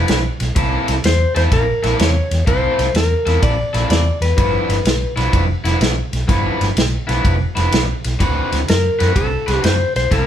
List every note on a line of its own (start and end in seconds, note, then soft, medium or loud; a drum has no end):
0.00 0.18 G2 medium
0.00 0.18 F3 medium
0.00 0.18 B3 medium
0.00 0.18 E4 medium
0.08 0.28 B1 medium
0.08 snare loud
0.08 ride medium
0.40 0.50 B1 medium
0.40 snare soft
0.40 ride medium
0.55 0.76 C2 medium
0.55 0.92 C3 medium
0.55 0.93 A#3 medium
0.55 0.93 E4 medium
0.55 0.93 A4 medium
0.55 kick loud
0.55 ride medium
0.88 0.98 C2 medium
0.88 snare soft
0.88 ride medium
1.04 1.24 E2 medium
1.04 1.36 C5 medium
1.04 snare loud
1.04 ride medium
1.35 1.46 E2 medium
1.35 1.61 C3 medium
1.35 1.61 A#3 medium
1.35 1.61 E4 medium
1.35 1.61 A4 loud
1.35 1.42 C5 medium
1.35 snare soft
1.35 ride medium
1.52 1.71 A#1 medium
1.52 1.97 A#4 medium
1.52 kick loud
1.52 snare soft
1.52 ride medium
1.83 1.93 A#1 medium
1.83 2.09 C3 medium
1.83 2.09 A#3 medium
1.83 2.09 E4 medium
1.83 2.09 A4 loud
1.83 snare soft
1.83 ride medium
1.99 2.19 E2 medium
1.99 2.48 C#5 medium
1.99 snare loud
1.99 ride medium
2.31 2.41 E2 medium
2.31 snare soft
2.31 ride medium
2.47 2.67 C2 loud
2.47 2.83 C3 medium
2.47 2.84 A#3 medium
2.47 2.84 E4 medium
2.47 2.84 A4 loud
2.47 2.97 C5 loud
2.47 kick loud
2.47 ride medium
2.79 2.89 C2 medium
2.79 snare soft
2.79 ride medium
2.94 3.14 E2 medium
2.94 3.45 A#4 medium
2.94 snare loud
2.94 ride medium
3.26 3.36 E2 medium
3.26 3.52 C3 medium
3.26 3.52 A#3 medium
3.26 3.52 E4 medium
3.26 3.52 A4 medium
3.26 snare soft
3.26 ride medium
3.43 3.62 A#1 medium
3.43 3.90 D5 loud
3.43 kick loud
3.43 ride medium
3.73 3.84 A#1 medium
3.73 4.00 C3 medium
3.73 4.00 A#3 medium
3.73 3.99 E4 medium
3.73 3.99 A4 medium
3.73 snare soft
3.73 ride medium
3.89 4.09 E2 medium
3.89 4.23 D5 loud
3.89 snare loud
3.89 ride medium
4.21 4.31 E2 medium
4.21 5.13 B4 medium
4.21 snare soft
4.21 ride medium
4.37 4.58 G1 medium
4.37 4.74 G2 medium
4.37 4.74 F3 medium
4.37 4.74 B3 medium
4.37 4.74 E4 medium
4.37 kick loud
4.37 ride medium
4.69 4.79 G1 medium
4.69 snare soft
4.69 ride medium
4.85 5.05 B1 medium
4.85 snare loud
4.85 ride medium
5.16 5.27 B1 medium
5.16 5.43 G2 medium
5.16 5.43 F3 medium
5.16 5.42 B3 medium
5.16 5.42 E4 medium
5.16 snare soft
5.16 ride medium
5.33 5.53 F1 medium
5.33 kick loud
5.33 ride medium
5.64 5.74 F1 medium
5.64 5.91 G2 medium
5.64 5.91 F3 medium
5.64 5.90 B3 medium
5.64 5.90 E4 medium
5.64 snare soft
5.64 ride medium
5.81 6.00 B1 medium
5.81 snare loud
5.81 ride medium
6.13 6.23 B1 medium
6.13 snare soft
6.13 ride medium
6.28 6.48 G1 medium
6.28 6.65 G2 medium
6.28 6.65 F3 medium
6.28 6.65 B3 loud
6.28 6.65 E4 medium
6.28 kick loud
6.28 snare soft
6.28 ride medium
6.61 6.71 G1 medium
6.61 snare soft
6.61 ride medium
6.77 6.96 B1 medium
6.77 snare loud
6.77 ride medium
7.07 7.18 B1 medium
7.07 7.34 G2 medium
7.07 7.34 F3 medium
7.07 7.34 B3 medium
7.07 7.33 E4 medium
7.07 snare soft
7.07 ride medium
7.24 7.44 F1 medium
7.24 kick loud
7.24 ride medium
7.55 7.66 F1 medium
7.55 7.82 G2 medium
7.55 7.82 F3 medium
7.55 7.81 B3 medium
7.55 7.81 E4 medium
7.55 snare soft
7.55 ride medium
7.72 7.92 B1 medium
7.72 snare loud
7.72 ride medium
8.04 8.15 B1 medium
8.04 snare soft
8.04 ride medium
8.19 8.40 D2 medium
8.19 8.56 D3 medium
8.19 8.57 C4 medium
8.19 8.57 F#4 loud
8.19 8.57 B4 loud
8.19 kick loud
8.19 ride medium
8.52 8.62 D2 medium
8.52 snare soft
8.52 ride medium
8.68 8.88 F#2 medium
8.68 9.13 A#4 medium
8.68 snare loud
8.68 ride medium
8.99 9.10 F#2 medium
8.99 9.25 D3 medium
8.99 9.25 C4 medium
8.99 9.25 F#4 medium
8.99 9.25 B4 medium
8.99 snare soft
8.99 ride medium
9.15 9.35 C2 medium
9.15 9.65 A4 medium
9.15 kick loud
9.15 ride medium
9.47 9.58 C2 medium
9.47 9.73 D3 medium
9.47 9.73 C4 medium
9.47 9.73 F#4 loud
9.47 9.72 B4 loud
9.47 snare soft
9.47 ride medium
9.64 9.83 F#2 medium
9.64 9.94 C5 medium
9.64 snare loud
9.64 ride medium
9.96 10.05 B1 medium
9.96 10.12 C5 medium
9.96 snare soft
9.96 ride medium
10.11 10.27 C2 loud
10.11 10.27 C3 medium
10.11 10.27 A#3 medium
10.11 10.27 E4 medium
10.11 10.27 A4 medium
10.11 10.27 A#4 medium
10.11 kick loud
10.11 snare soft
10.11 ride medium